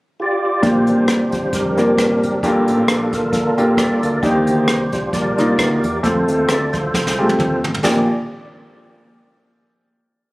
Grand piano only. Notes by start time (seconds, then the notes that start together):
0.62 A#2 A#3 D4 F4 G4
1.77 A#3 D4 F4 A#4
2.43 G2 A#3 D4 F4 G4
3.57 A#3 D4 F4 G4
4.23 D#3 A#3 D4 D#4 G4
5.38 A#3 D4 D#4 F4
6.03 A3 C4 F4 A4
7.18 G#3 C4 F4 G4
7.24 A3
7.83 A#1 A#3 D4 F4 G4